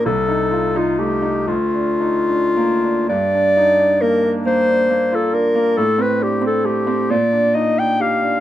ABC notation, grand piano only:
X:1
M:6/8
L:1/16
Q:3/8=44
K:Gm
V:1 name="Grand piano"
C,, E F E A, E D,, D E D B, D | G,, D E D B, D B, D B, F D B, | A,, C D C A, C B,, D E D G D |]